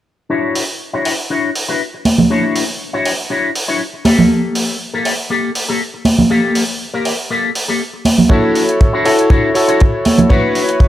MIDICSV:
0, 0, Header, 1, 5, 480
1, 0, Start_track
1, 0, Key_signature, 2, "major"
1, 0, Tempo, 500000
1, 292, Time_signature, 4, 2, 24, 8
1, 10445, End_track
2, 0, Start_track
2, 0, Title_t, "Electric grand piano"
2, 0, Program_c, 0, 2
2, 7962, Note_on_c, 0, 73, 81
2, 7967, Note_on_c, 0, 64, 73
2, 7974, Note_on_c, 0, 66, 76
2, 7982, Note_on_c, 0, 69, 93
2, 8660, Note_off_c, 0, 73, 0
2, 8663, Note_off_c, 0, 64, 0
2, 8666, Note_off_c, 0, 66, 0
2, 8670, Note_off_c, 0, 69, 0
2, 8687, Note_on_c, 0, 73, 80
2, 8689, Note_on_c, 0, 64, 76
2, 8694, Note_on_c, 0, 66, 75
2, 8697, Note_on_c, 0, 69, 90
2, 9143, Note_off_c, 0, 73, 0
2, 9144, Note_off_c, 0, 64, 0
2, 9146, Note_off_c, 0, 66, 0
2, 9147, Note_off_c, 0, 69, 0
2, 9163, Note_on_c, 0, 73, 71
2, 9168, Note_on_c, 0, 64, 65
2, 9174, Note_on_c, 0, 66, 66
2, 9182, Note_on_c, 0, 69, 82
2, 9860, Note_off_c, 0, 73, 0
2, 9863, Note_off_c, 0, 64, 0
2, 9866, Note_off_c, 0, 66, 0
2, 9870, Note_off_c, 0, 69, 0
2, 9883, Note_on_c, 0, 73, 84
2, 9890, Note_on_c, 0, 64, 75
2, 9897, Note_on_c, 0, 66, 77
2, 9903, Note_on_c, 0, 71, 91
2, 10445, Note_off_c, 0, 64, 0
2, 10445, Note_off_c, 0, 66, 0
2, 10445, Note_off_c, 0, 71, 0
2, 10445, Note_off_c, 0, 73, 0
2, 10445, End_track
3, 0, Start_track
3, 0, Title_t, "Clean electric guitar"
3, 0, Program_c, 1, 27
3, 284, Note_on_c, 1, 62, 92
3, 289, Note_on_c, 1, 66, 94
3, 293, Note_on_c, 1, 73, 100
3, 296, Note_on_c, 1, 64, 79
3, 594, Note_off_c, 1, 62, 0
3, 594, Note_off_c, 1, 66, 0
3, 595, Note_off_c, 1, 64, 0
3, 595, Note_off_c, 1, 73, 0
3, 896, Note_on_c, 1, 64, 72
3, 899, Note_on_c, 1, 73, 72
3, 905, Note_on_c, 1, 66, 60
3, 906, Note_on_c, 1, 62, 68
3, 1075, Note_off_c, 1, 62, 0
3, 1075, Note_off_c, 1, 64, 0
3, 1075, Note_off_c, 1, 73, 0
3, 1076, Note_off_c, 1, 66, 0
3, 1249, Note_on_c, 1, 62, 81
3, 1254, Note_on_c, 1, 66, 69
3, 1257, Note_on_c, 1, 73, 72
3, 1261, Note_on_c, 1, 64, 62
3, 1436, Note_off_c, 1, 62, 0
3, 1436, Note_off_c, 1, 64, 0
3, 1436, Note_off_c, 1, 66, 0
3, 1436, Note_off_c, 1, 73, 0
3, 1617, Note_on_c, 1, 64, 71
3, 1624, Note_on_c, 1, 71, 88
3, 1628, Note_on_c, 1, 66, 67
3, 1633, Note_on_c, 1, 62, 63
3, 1733, Note_off_c, 1, 62, 0
3, 1733, Note_off_c, 1, 64, 0
3, 1733, Note_off_c, 1, 66, 0
3, 1733, Note_off_c, 1, 71, 0
3, 2209, Note_on_c, 1, 62, 91
3, 2214, Note_on_c, 1, 66, 90
3, 2220, Note_on_c, 1, 73, 97
3, 2223, Note_on_c, 1, 64, 82
3, 2517, Note_off_c, 1, 62, 0
3, 2517, Note_off_c, 1, 64, 0
3, 2517, Note_off_c, 1, 66, 0
3, 2517, Note_off_c, 1, 73, 0
3, 2815, Note_on_c, 1, 64, 68
3, 2819, Note_on_c, 1, 73, 90
3, 2822, Note_on_c, 1, 66, 70
3, 2825, Note_on_c, 1, 62, 69
3, 2995, Note_off_c, 1, 62, 0
3, 2995, Note_off_c, 1, 64, 0
3, 2995, Note_off_c, 1, 66, 0
3, 2995, Note_off_c, 1, 73, 0
3, 3168, Note_on_c, 1, 62, 78
3, 3173, Note_on_c, 1, 66, 68
3, 3177, Note_on_c, 1, 73, 78
3, 3182, Note_on_c, 1, 64, 61
3, 3356, Note_off_c, 1, 62, 0
3, 3356, Note_off_c, 1, 64, 0
3, 3356, Note_off_c, 1, 66, 0
3, 3356, Note_off_c, 1, 73, 0
3, 3534, Note_on_c, 1, 64, 67
3, 3538, Note_on_c, 1, 73, 88
3, 3542, Note_on_c, 1, 66, 68
3, 3547, Note_on_c, 1, 62, 70
3, 3650, Note_off_c, 1, 62, 0
3, 3650, Note_off_c, 1, 66, 0
3, 3651, Note_off_c, 1, 64, 0
3, 3651, Note_off_c, 1, 73, 0
3, 3886, Note_on_c, 1, 69, 85
3, 3890, Note_on_c, 1, 67, 66
3, 3892, Note_on_c, 1, 58, 73
3, 4565, Note_off_c, 1, 58, 0
3, 4565, Note_off_c, 1, 67, 0
3, 4565, Note_off_c, 1, 69, 0
3, 4738, Note_on_c, 1, 69, 84
3, 4742, Note_on_c, 1, 67, 69
3, 4745, Note_on_c, 1, 58, 80
3, 4916, Note_off_c, 1, 58, 0
3, 4916, Note_off_c, 1, 67, 0
3, 4916, Note_off_c, 1, 69, 0
3, 5087, Note_on_c, 1, 58, 75
3, 5093, Note_on_c, 1, 67, 69
3, 5097, Note_on_c, 1, 69, 76
3, 5275, Note_off_c, 1, 58, 0
3, 5275, Note_off_c, 1, 67, 0
3, 5275, Note_off_c, 1, 69, 0
3, 5457, Note_on_c, 1, 69, 84
3, 5460, Note_on_c, 1, 67, 66
3, 5467, Note_on_c, 1, 58, 67
3, 5571, Note_off_c, 1, 69, 0
3, 5572, Note_off_c, 1, 58, 0
3, 5572, Note_off_c, 1, 67, 0
3, 6047, Note_on_c, 1, 58, 100
3, 6052, Note_on_c, 1, 67, 85
3, 6055, Note_on_c, 1, 69, 99
3, 6355, Note_off_c, 1, 58, 0
3, 6355, Note_off_c, 1, 67, 0
3, 6355, Note_off_c, 1, 69, 0
3, 6658, Note_on_c, 1, 70, 90
3, 6663, Note_on_c, 1, 67, 71
3, 6666, Note_on_c, 1, 58, 72
3, 6836, Note_off_c, 1, 58, 0
3, 6836, Note_off_c, 1, 67, 0
3, 6836, Note_off_c, 1, 70, 0
3, 7010, Note_on_c, 1, 58, 78
3, 7013, Note_on_c, 1, 67, 67
3, 7018, Note_on_c, 1, 69, 78
3, 7196, Note_off_c, 1, 58, 0
3, 7196, Note_off_c, 1, 67, 0
3, 7196, Note_off_c, 1, 69, 0
3, 7376, Note_on_c, 1, 69, 87
3, 7382, Note_on_c, 1, 67, 63
3, 7387, Note_on_c, 1, 58, 66
3, 7491, Note_off_c, 1, 69, 0
3, 7492, Note_off_c, 1, 58, 0
3, 7492, Note_off_c, 1, 67, 0
3, 7966, Note_on_c, 1, 62, 103
3, 7971, Note_on_c, 1, 66, 96
3, 7976, Note_on_c, 1, 73, 99
3, 7980, Note_on_c, 1, 64, 82
3, 8275, Note_off_c, 1, 62, 0
3, 8275, Note_off_c, 1, 66, 0
3, 8275, Note_off_c, 1, 73, 0
3, 8276, Note_off_c, 1, 64, 0
3, 8572, Note_on_c, 1, 64, 74
3, 8579, Note_on_c, 1, 73, 85
3, 8582, Note_on_c, 1, 66, 75
3, 8589, Note_on_c, 1, 62, 70
3, 8754, Note_off_c, 1, 66, 0
3, 8755, Note_off_c, 1, 62, 0
3, 8755, Note_off_c, 1, 64, 0
3, 8755, Note_off_c, 1, 73, 0
3, 8925, Note_on_c, 1, 62, 76
3, 8929, Note_on_c, 1, 66, 65
3, 8933, Note_on_c, 1, 73, 78
3, 8938, Note_on_c, 1, 64, 65
3, 9114, Note_off_c, 1, 64, 0
3, 9114, Note_off_c, 1, 66, 0
3, 9115, Note_off_c, 1, 62, 0
3, 9115, Note_off_c, 1, 73, 0
3, 9291, Note_on_c, 1, 64, 76
3, 9297, Note_on_c, 1, 73, 87
3, 9302, Note_on_c, 1, 66, 67
3, 9306, Note_on_c, 1, 62, 64
3, 9410, Note_off_c, 1, 62, 0
3, 9410, Note_off_c, 1, 64, 0
3, 9410, Note_off_c, 1, 66, 0
3, 9410, Note_off_c, 1, 73, 0
3, 9887, Note_on_c, 1, 62, 100
3, 9891, Note_on_c, 1, 66, 90
3, 9894, Note_on_c, 1, 73, 112
3, 9898, Note_on_c, 1, 64, 83
3, 10195, Note_off_c, 1, 62, 0
3, 10195, Note_off_c, 1, 64, 0
3, 10195, Note_off_c, 1, 66, 0
3, 10195, Note_off_c, 1, 73, 0
3, 10445, End_track
4, 0, Start_track
4, 0, Title_t, "Muted clean electric guitar strokes"
4, 1862, Note_on_c, 9, 29, 27
4, 1958, Note_off_c, 9, 29, 0
4, 3775, Note_on_c, 9, 29, 29
4, 3871, Note_off_c, 9, 29, 0
4, 5700, Note_on_c, 9, 29, 28
4, 5796, Note_off_c, 9, 29, 0
4, 7616, Note_on_c, 9, 29, 29
4, 7712, Note_off_c, 9, 29, 0
4, 9537, Note_on_c, 9, 29, 30
4, 9633, Note_off_c, 9, 29, 0
4, 10445, End_track
5, 0, Start_track
5, 0, Title_t, "Drums"
5, 532, Note_on_c, 9, 46, 93
5, 628, Note_off_c, 9, 46, 0
5, 1011, Note_on_c, 9, 46, 88
5, 1107, Note_off_c, 9, 46, 0
5, 1493, Note_on_c, 9, 46, 92
5, 1589, Note_off_c, 9, 46, 0
5, 1970, Note_on_c, 9, 63, 69
5, 1971, Note_on_c, 9, 46, 99
5, 2066, Note_off_c, 9, 63, 0
5, 2067, Note_off_c, 9, 46, 0
5, 2096, Note_on_c, 9, 63, 84
5, 2101, Note_on_c, 9, 64, 72
5, 2192, Note_off_c, 9, 63, 0
5, 2197, Note_off_c, 9, 64, 0
5, 2453, Note_on_c, 9, 46, 91
5, 2549, Note_off_c, 9, 46, 0
5, 2933, Note_on_c, 9, 46, 97
5, 3029, Note_off_c, 9, 46, 0
5, 3412, Note_on_c, 9, 46, 95
5, 3508, Note_off_c, 9, 46, 0
5, 3888, Note_on_c, 9, 63, 79
5, 3891, Note_on_c, 9, 46, 104
5, 3984, Note_off_c, 9, 63, 0
5, 3987, Note_off_c, 9, 46, 0
5, 4020, Note_on_c, 9, 63, 89
5, 4024, Note_on_c, 9, 64, 82
5, 4116, Note_off_c, 9, 63, 0
5, 4120, Note_off_c, 9, 64, 0
5, 4371, Note_on_c, 9, 46, 101
5, 4467, Note_off_c, 9, 46, 0
5, 4851, Note_on_c, 9, 46, 98
5, 4947, Note_off_c, 9, 46, 0
5, 5331, Note_on_c, 9, 46, 97
5, 5427, Note_off_c, 9, 46, 0
5, 5807, Note_on_c, 9, 63, 81
5, 5811, Note_on_c, 9, 46, 99
5, 5903, Note_off_c, 9, 63, 0
5, 5907, Note_off_c, 9, 46, 0
5, 5937, Note_on_c, 9, 64, 71
5, 5938, Note_on_c, 9, 63, 96
5, 6033, Note_off_c, 9, 64, 0
5, 6034, Note_off_c, 9, 63, 0
5, 6291, Note_on_c, 9, 46, 98
5, 6387, Note_off_c, 9, 46, 0
5, 6771, Note_on_c, 9, 46, 89
5, 6867, Note_off_c, 9, 46, 0
5, 7252, Note_on_c, 9, 46, 94
5, 7348, Note_off_c, 9, 46, 0
5, 7728, Note_on_c, 9, 63, 71
5, 7732, Note_on_c, 9, 46, 110
5, 7824, Note_off_c, 9, 63, 0
5, 7828, Note_off_c, 9, 46, 0
5, 7854, Note_on_c, 9, 63, 79
5, 7858, Note_on_c, 9, 64, 72
5, 7950, Note_off_c, 9, 63, 0
5, 7954, Note_off_c, 9, 64, 0
5, 7965, Note_on_c, 9, 36, 115
5, 8061, Note_off_c, 9, 36, 0
5, 8212, Note_on_c, 9, 46, 93
5, 8308, Note_off_c, 9, 46, 0
5, 8341, Note_on_c, 9, 42, 56
5, 8437, Note_off_c, 9, 42, 0
5, 8454, Note_on_c, 9, 42, 49
5, 8456, Note_on_c, 9, 36, 86
5, 8550, Note_off_c, 9, 42, 0
5, 8552, Note_off_c, 9, 36, 0
5, 8693, Note_on_c, 9, 46, 92
5, 8789, Note_off_c, 9, 46, 0
5, 8821, Note_on_c, 9, 42, 59
5, 8917, Note_off_c, 9, 42, 0
5, 8930, Note_on_c, 9, 36, 118
5, 8931, Note_on_c, 9, 42, 47
5, 9026, Note_off_c, 9, 36, 0
5, 9027, Note_off_c, 9, 42, 0
5, 9171, Note_on_c, 9, 46, 96
5, 9267, Note_off_c, 9, 46, 0
5, 9299, Note_on_c, 9, 42, 61
5, 9395, Note_off_c, 9, 42, 0
5, 9411, Note_on_c, 9, 42, 45
5, 9422, Note_on_c, 9, 36, 87
5, 9507, Note_off_c, 9, 42, 0
5, 9518, Note_off_c, 9, 36, 0
5, 9650, Note_on_c, 9, 46, 102
5, 9657, Note_on_c, 9, 63, 72
5, 9746, Note_off_c, 9, 46, 0
5, 9753, Note_off_c, 9, 63, 0
5, 9773, Note_on_c, 9, 64, 72
5, 9778, Note_on_c, 9, 63, 93
5, 9779, Note_on_c, 9, 42, 55
5, 9869, Note_off_c, 9, 64, 0
5, 9874, Note_off_c, 9, 63, 0
5, 9875, Note_off_c, 9, 42, 0
5, 9890, Note_on_c, 9, 36, 114
5, 9891, Note_on_c, 9, 42, 52
5, 9986, Note_off_c, 9, 36, 0
5, 9987, Note_off_c, 9, 42, 0
5, 10131, Note_on_c, 9, 46, 95
5, 10227, Note_off_c, 9, 46, 0
5, 10259, Note_on_c, 9, 42, 55
5, 10355, Note_off_c, 9, 42, 0
5, 10369, Note_on_c, 9, 36, 81
5, 10372, Note_on_c, 9, 42, 49
5, 10445, Note_off_c, 9, 36, 0
5, 10445, Note_off_c, 9, 42, 0
5, 10445, End_track
0, 0, End_of_file